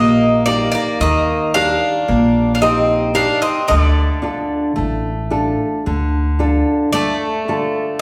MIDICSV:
0, 0, Header, 1, 5, 480
1, 0, Start_track
1, 0, Tempo, 1079137
1, 1646, Time_signature, 9, 3, 24, 8
1, 3563, End_track
2, 0, Start_track
2, 0, Title_t, "Bouzouki"
2, 0, Program_c, 0, 25
2, 0, Note_on_c, 0, 75, 91
2, 201, Note_off_c, 0, 75, 0
2, 203, Note_on_c, 0, 74, 87
2, 313, Note_off_c, 0, 74, 0
2, 318, Note_on_c, 0, 74, 81
2, 446, Note_off_c, 0, 74, 0
2, 449, Note_on_c, 0, 75, 83
2, 670, Note_off_c, 0, 75, 0
2, 686, Note_on_c, 0, 77, 85
2, 1128, Note_off_c, 0, 77, 0
2, 1133, Note_on_c, 0, 77, 64
2, 1162, Note_off_c, 0, 77, 0
2, 1164, Note_on_c, 0, 75, 75
2, 1388, Note_off_c, 0, 75, 0
2, 1401, Note_on_c, 0, 77, 85
2, 1515, Note_off_c, 0, 77, 0
2, 1520, Note_on_c, 0, 75, 75
2, 1637, Note_off_c, 0, 75, 0
2, 1638, Note_on_c, 0, 74, 78
2, 3075, Note_off_c, 0, 74, 0
2, 3080, Note_on_c, 0, 74, 84
2, 3547, Note_off_c, 0, 74, 0
2, 3563, End_track
3, 0, Start_track
3, 0, Title_t, "Nylon-string guitar"
3, 0, Program_c, 1, 24
3, 0, Note_on_c, 1, 58, 69
3, 0, Note_on_c, 1, 67, 43
3, 0, Note_on_c, 1, 70, 54
3, 108, Note_off_c, 1, 67, 0
3, 109, Note_off_c, 1, 70, 0
3, 204, Note_on_c, 1, 63, 48
3, 207, Note_on_c, 1, 67, 44
3, 209, Note_on_c, 1, 70, 53
3, 431, Note_off_c, 1, 58, 0
3, 446, Note_on_c, 1, 51, 62
3, 589, Note_off_c, 1, 63, 0
3, 591, Note_off_c, 1, 67, 0
3, 592, Note_off_c, 1, 70, 0
3, 691, Note_on_c, 1, 67, 46
3, 694, Note_on_c, 1, 70, 53
3, 911, Note_off_c, 1, 51, 0
3, 927, Note_on_c, 1, 58, 66
3, 1074, Note_off_c, 1, 67, 0
3, 1074, Note_off_c, 1, 70, 0
3, 1163, Note_on_c, 1, 63, 49
3, 1164, Note_on_c, 1, 67, 45
3, 1166, Note_on_c, 1, 70, 53
3, 1391, Note_off_c, 1, 63, 0
3, 1392, Note_off_c, 1, 58, 0
3, 1394, Note_off_c, 1, 67, 0
3, 1394, Note_off_c, 1, 70, 0
3, 1396, Note_on_c, 1, 63, 49
3, 1399, Note_on_c, 1, 67, 46
3, 1400, Note_on_c, 1, 70, 55
3, 1592, Note_off_c, 1, 63, 0
3, 1594, Note_off_c, 1, 67, 0
3, 1594, Note_off_c, 1, 70, 0
3, 1640, Note_on_c, 1, 50, 67
3, 1876, Note_on_c, 1, 62, 45
3, 1880, Note_on_c, 1, 65, 40
3, 1883, Note_on_c, 1, 69, 50
3, 2109, Note_off_c, 1, 50, 0
3, 2116, Note_on_c, 1, 57, 65
3, 2265, Note_off_c, 1, 62, 0
3, 2267, Note_off_c, 1, 65, 0
3, 2268, Note_off_c, 1, 69, 0
3, 2359, Note_on_c, 1, 62, 49
3, 2362, Note_on_c, 1, 65, 46
3, 2364, Note_on_c, 1, 69, 54
3, 2587, Note_off_c, 1, 57, 0
3, 2607, Note_on_c, 1, 50, 57
3, 2747, Note_off_c, 1, 62, 0
3, 2749, Note_off_c, 1, 65, 0
3, 2749, Note_off_c, 1, 69, 0
3, 2842, Note_on_c, 1, 62, 41
3, 2846, Note_on_c, 1, 65, 44
3, 2847, Note_on_c, 1, 69, 47
3, 3074, Note_off_c, 1, 50, 0
3, 3084, Note_on_c, 1, 57, 62
3, 3229, Note_off_c, 1, 62, 0
3, 3231, Note_off_c, 1, 65, 0
3, 3231, Note_off_c, 1, 69, 0
3, 3328, Note_on_c, 1, 50, 45
3, 3330, Note_on_c, 1, 65, 44
3, 3332, Note_on_c, 1, 69, 50
3, 3553, Note_off_c, 1, 57, 0
3, 3563, Note_off_c, 1, 50, 0
3, 3563, Note_off_c, 1, 65, 0
3, 3563, Note_off_c, 1, 69, 0
3, 3563, End_track
4, 0, Start_track
4, 0, Title_t, "Bouzouki"
4, 0, Program_c, 2, 25
4, 0, Note_on_c, 2, 58, 69
4, 192, Note_off_c, 2, 58, 0
4, 206, Note_on_c, 2, 58, 63
4, 317, Note_off_c, 2, 58, 0
4, 333, Note_on_c, 2, 58, 67
4, 441, Note_off_c, 2, 58, 0
4, 456, Note_on_c, 2, 58, 76
4, 675, Note_off_c, 2, 58, 0
4, 689, Note_on_c, 2, 62, 69
4, 1118, Note_off_c, 2, 62, 0
4, 1132, Note_on_c, 2, 62, 49
4, 1162, Note_off_c, 2, 62, 0
4, 1170, Note_on_c, 2, 60, 65
4, 1391, Note_off_c, 2, 60, 0
4, 1405, Note_on_c, 2, 62, 71
4, 1517, Note_off_c, 2, 62, 0
4, 1522, Note_on_c, 2, 60, 65
4, 1635, Note_on_c, 2, 57, 62
4, 1636, Note_off_c, 2, 60, 0
4, 3084, Note_off_c, 2, 57, 0
4, 3089, Note_on_c, 2, 57, 65
4, 3552, Note_off_c, 2, 57, 0
4, 3563, End_track
5, 0, Start_track
5, 0, Title_t, "Upright bass"
5, 0, Program_c, 3, 32
5, 0, Note_on_c, 3, 34, 83
5, 302, Note_off_c, 3, 34, 0
5, 446, Note_on_c, 3, 39, 80
5, 782, Note_off_c, 3, 39, 0
5, 930, Note_on_c, 3, 34, 87
5, 1433, Note_off_c, 3, 34, 0
5, 1649, Note_on_c, 3, 38, 91
5, 1816, Note_off_c, 3, 38, 0
5, 2127, Note_on_c, 3, 33, 80
5, 2463, Note_off_c, 3, 33, 0
5, 2609, Note_on_c, 3, 38, 84
5, 2945, Note_off_c, 3, 38, 0
5, 3563, End_track
0, 0, End_of_file